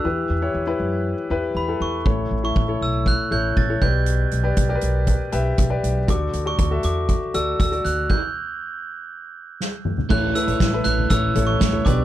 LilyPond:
<<
  \new Staff \with { instrumentName = "Glockenspiel" } { \time 4/4 \key a \mixolydian \tempo 4 = 119 e'''8 r2 r8 b''8 cis'''8~ | cis'''8. cis'''8. e'''8 fis'''8 g'''8 a'''8 g'''8~ | g'''8 r2. r8 | d'''8. cis'''8. d'''4 e'''8 e'''8 fis'''8 |
g'''2. r4 | fis'''8 e'''4 fis'''8 e'''8. cis'''8. d'''8 | }
  \new Staff \with { instrumentName = "Grand piano" } { \time 4/4 \key a \mixolydian <e' g' b'>8 r16 <e' g' cis''>16 r16 <e' g' b'>4 r16 <e' g' b'>8 r16 <e' g' a'>8 r16 | <e' a' cis''>8 r16 <e' a' e''>16 r16 <e' a' cis''>4 r16 <e' a' cis''>8 r16 <e' a' cis''>16 <g' b' d''>8~ | <g' b' d''>8 r16 <g' b' d''>16 r16 <g' bes' b' d''>4 r16 <g' b' e''>8 r16 <g' b' d''>8 r16 | <fis' a' d''>8 r16 <fis' a' d''>16 r16 <fis' a' e''>4 r16 <fis' a' d''>8 r16 <fis' a' d''>8 r16 |
r1 | <e' a' cis''>16 r16 <e' a' b'>8 r16 <e' a' b'>8 r16 <e' a' cis''>16 r16 <e' a' cis''>8 r16 <e' a' cis''>16 <g' b' d''>8 | }
  \new Staff \with { instrumentName = "Grand piano" } { \clef bass \time 4/4 \key a \mixolydian e4. r2 r8 | a,4. r2 b,8~ | b,4 r2. | d4. r2 r8 |
r1 | a,4. r2 b,8 | }
  \new Staff \with { instrumentName = "Clean electric guitar" } { \time 4/4 \key a \mixolydian r1 | r1 | r1 | r1 |
r1 | <a e' a' cis''>8. <e' a' cis''>8. <a e' a' cis''>8 <a e' a' cis''>4 <a e' a' cis''>8 <b d' g' d''>8 | }
  \new Staff \with { instrumentName = "Upright bass" } { \clef bass \time 4/4 \key a \mixolydian e,8 e,8 e,8 fis,8. r16 e,8 e,8 e,8 | a,,8 a,,8 a,,8 b,,8. r16 a,,8 a,,8 b,,8~ | b,,8 b,,8 b,,8 b,,8. r16 b,,8 b,,8 b,,8 | d,8 d,8 d,8 e,8. r16 d,8 d,8 d,8 |
r1 | a,,8 r16 a,,16 a,,8 a,,8 a,,8 a,,8 a,,8 b,,8 | }
  \new DrumStaff \with { instrumentName = "Drums" } \drummode { \time 4/4 r4 r4 r4 r4 | bd4 bd4 bd4 bd8 bd8 | hh8 hh8 <hh bd>8 hh8 <hh bd>8 hh8 <hh bd>8 hh8 | <hh bd>8 hh8 <hh bd>8 hh8 <hh bd>8 hh8 <hh bd>16 hh16 hh8 |
<cymc bd>4 r4 r4 sn8 toml16 tomfh16 | <cymc bd>8 hh16 hh16 <hh bd sn>8 hh16 tomfh16 <hh bd>8 <hh tomfh>8 <hh bd sn>16 tomfh16 <hh bd tomfh>8 | }
>>